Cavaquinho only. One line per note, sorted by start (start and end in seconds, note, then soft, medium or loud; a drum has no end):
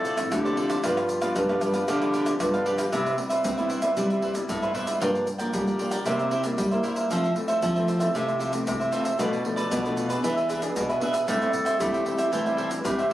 0.04 0.16 F4 medium
0.04 0.16 A4 medium
0.04 0.16 C5 medium
0.04 0.17 D5 medium
0.17 muted cavaquinho stroke soft
0.45 0.56 A4 soft
0.45 0.57 C5 soft
0.45 0.57 D5 medium
0.57 0.69 F4 medium
0.57 0.70 A4 medium
0.57 0.69 C5 medium
0.57 0.68 D5 medium
0.69 0.83 A4 soft
0.69 0.82 C5 soft
0.69 0.82 D5 soft
0.83 0.95 D4 medium
0.83 0.96 G4 medium
0.83 0.96 B4 medium
0.83 0.96 F5 medium
0.97 1.08 G4 soft
0.97 1.09 B4 soft
0.97 1.09 F5 soft
1.09 muted cavaquinho stroke soft
1.21 1.48 G4 medium
1.21 1.48 B4 medium
1.21 1.47 F5 medium
1.49 1.61 G4 soft
1.49 1.61 B4 soft
1.49 1.61 F5 soft
1.61 1.74 D4 soft
1.61 1.74 G4 soft
1.61 1.74 B4 soft
1.61 1.72 F5 soft
1.74 1.87 G4 medium
1.74 1.87 B4 medium
1.74 1.86 F5 medium
1.88 2.00 D4 medium
1.88 2.00 G4 medium
1.88 2.01 B4 medium
1.88 2.00 F5 medium
2.01 2.13 G4 soft
2.01 2.14 B4 soft
2.01 2.13 F5 soft
2.13 2.25 D4 medium
2.13 2.25 G4 medium
2.13 2.26 B4 medium
2.13 2.26 F5 medium
2.26 muted cavaquinho stroke soft
2.54 2.65 G4 soft
2.54 2.66 B4 soft
2.54 2.65 F5 medium
2.65 2.78 D4 medium
2.65 2.78 G4 medium
2.65 2.78 B4 medium
2.65 2.76 F5 medium
2.78 2.92 G4 soft
2.78 2.91 B4 soft
2.78 2.91 F5 soft
2.92 3.04 E4 medium
2.92 3.05 B4 medium
2.92 3.05 C5 medium
2.92 3.04 E5 medium
3.05 3.17 B4 soft
3.05 3.17 C5 soft
3.05 3.17 E5 soft
3.17 muted cavaquinho stroke soft
3.29 3.56 B4 medium
3.29 3.57 C5 medium
3.29 3.56 E5 medium
3.57 3.69 B4 soft
3.57 3.69 C5 soft
3.57 3.70 E5 soft
3.69 3.82 E4 soft
3.69 3.82 B4 soft
3.69 3.82 C5 soft
3.69 3.81 E5 soft
3.82 3.95 B4 medium
3.82 3.96 C5 medium
3.82 3.95 E5 medium
3.97 4.09 E4 medium
3.97 4.09 B4 medium
3.97 4.09 C5 medium
3.97 4.09 E5 medium
4.10 4.22 B4 soft
4.10 4.21 C5 soft
4.10 4.22 E5 soft
4.22 4.33 E4 medium
4.22 4.34 B4 medium
4.22 4.33 C5 medium
4.22 4.34 E5 medium
4.34 muted cavaquinho stroke soft
4.62 4.74 B4 soft
4.62 4.73 C5 soft
4.62 4.74 E5 medium
4.74 4.87 E4 medium
4.74 4.87 B4 medium
4.74 4.87 C5 medium
4.74 4.86 E5 medium
4.87 5.00 B4 soft
4.87 5.01 C5 soft
4.87 5.00 E5 soft
5.00 5.13 F4 medium
5.00 5.13 A#4 medium
5.00 5.13 D5 medium
5.00 5.12 G5 medium
5.14 5.26 A#4 soft
5.14 5.26 D5 soft
5.14 5.26 G5 soft
5.26 muted cavaquinho stroke soft
5.38 5.66 A#4 medium
5.38 5.65 D5 medium
5.38 5.65 G5 medium
5.67 5.78 A#4 soft
5.67 5.79 D5 soft
5.67 5.79 G5 soft
5.78 5.91 F4 soft
5.78 5.92 A#4 soft
5.78 5.91 D5 soft
5.78 5.90 G5 soft
5.91 6.05 A#4 medium
5.91 6.05 D5 medium
5.91 6.04 G5 medium
6.05 6.18 E4 medium
6.05 6.18 A#4 medium
6.05 6.18 C5 medium
6.05 6.18 E5 medium
6.19 6.30 A#4 soft
6.19 6.31 C5 soft
6.19 6.31 E5 soft
6.31 6.42 E4 medium
6.31 6.43 A#4 medium
6.31 6.43 C5 medium
6.31 6.43 E5 medium
6.44 muted cavaquinho stroke soft
6.71 6.82 A#4 soft
6.71 6.83 C5 soft
6.71 6.83 E5 medium
6.83 6.96 E4 medium
6.83 6.96 A#4 medium
6.83 6.96 C5 medium
6.83 6.94 E5 medium
6.96 7.10 A#4 soft
6.96 7.09 C5 soft
6.96 7.09 E5 soft
7.10 7.22 F4 medium
7.10 7.23 A4 medium
7.10 7.23 C5 medium
7.10 7.22 E5 medium
7.24 7.35 A4 soft
7.24 7.36 C5 soft
7.24 7.36 E5 soft
7.36 muted cavaquinho stroke soft
7.48 7.75 A4 medium
7.48 7.74 C5 medium
7.48 7.74 E5 medium
7.75 7.87 A4 soft
7.75 7.88 C5 soft
7.75 7.87 E5 soft
7.88 8.00 F4 soft
7.88 8.00 A4 soft
7.88 8.00 C5 soft
7.88 7.98 E5 soft
8.00 8.14 A4 medium
8.00 8.13 C5 medium
8.00 8.13 E5 medium
8.14 8.27 F4 medium
8.14 8.27 A4 medium
8.14 8.27 C5 medium
8.14 8.26 E5 medium
8.27 8.39 A4 soft
8.27 8.39 C5 soft
8.27 8.40 E5 soft
8.39 8.51 F4 medium
8.39 8.51 A4 medium
8.39 8.52 C5 medium
8.39 8.52 E5 medium
8.52 muted cavaquinho stroke soft
8.80 8.92 A4 soft
8.80 8.92 C5 soft
8.80 8.92 E5 soft
8.92 9.05 F4 medium
8.92 9.05 A4 medium
8.92 9.04 C5 medium
8.92 9.03 E5 medium
9.04 9.18 A4 soft
9.04 9.18 C5 soft
9.04 9.17 E5 soft
9.19 9.31 F4 medium
9.19 9.31 A4 medium
9.19 9.32 B4 medium
9.19 9.31 D5 medium
9.32 9.43 A4 soft
9.32 9.43 B4 soft
9.32 9.44 D5 soft
9.44 muted cavaquinho stroke soft
9.56 9.84 A4 medium
9.56 9.83 B4 medium
9.56 9.82 D5 medium
9.84 9.96 A4 soft
9.84 9.97 B4 soft
9.84 9.97 D5 soft
9.96 10.09 F4 soft
9.96 10.09 A4 soft
9.96 10.09 B4 soft
9.96 10.08 D5 soft
10.09 10.23 A4 medium
10.09 10.22 B4 medium
10.09 10.22 D5 medium
10.23 10.35 D4 medium
10.23 10.36 G#4 medium
10.23 10.36 B4 medium
10.23 10.35 E5 medium
10.36 10.48 G#4 soft
10.36 10.49 B4 soft
10.36 10.49 E5 soft
10.49 10.60 D4 medium
10.49 10.61 G#4 medium
10.49 10.61 B4 medium
10.49 10.61 E5 medium
10.61 muted cavaquinho stroke soft
10.89 11.00 G#4 soft
10.89 11.01 B4 soft
10.89 11.01 E5 soft
11.01 11.13 D4 medium
11.01 11.14 G#4 medium
11.01 11.13 B4 medium
11.01 11.12 E5 medium
11.13 11.27 G#4 soft
11.13 11.27 B4 soft
11.13 11.26 E5 soft
11.27 11.40 A4 medium
11.27 11.40 C5 medium
11.27 11.40 E5 medium
11.27 11.40 G5 medium
11.41 11.52 C5 soft
11.41 11.52 E5 soft
11.41 11.53 G5 soft
11.53 muted cavaquinho stroke soft
11.65 11.92 C5 medium
11.65 11.92 E5 medium
11.65 11.91 G5 medium
11.93 12.05 C5 soft
11.93 12.05 E5 soft
11.93 12.05 G5 soft
12.05 12.18 A4 soft
12.05 12.18 C5 soft
12.05 12.17 E5 soft
12.05 12.16 G5 soft
12.17 12.31 C5 soft
12.17 12.31 E5 medium
12.17 12.31 G5 medium
12.32 12.44 A4 medium
12.32 12.45 C5 medium
12.32 12.45 E5 medium
12.32 12.44 G5 medium
12.45 12.57 C5 soft
12.45 12.57 E5 soft
12.45 12.58 G5 soft
12.57 12.69 A4 medium
12.57 12.70 C5 medium
12.57 12.70 E5 medium
12.57 12.70 G5 medium
12.71 muted cavaquinho stroke soft
12.98 13.10 C5 soft
12.98 13.10 E5 soft
12.98 13.10 G5 soft